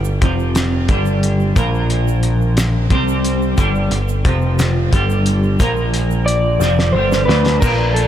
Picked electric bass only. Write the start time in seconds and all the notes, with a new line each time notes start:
Already playing: G1
0.89 G1
1.56 A#1
2.91 C2
3.58 G1
3.90 G1
4.25 F1
4.93 G1
5.60 A#1
6.60 F1
6.94 G1
7.28 D2
7.62 A#1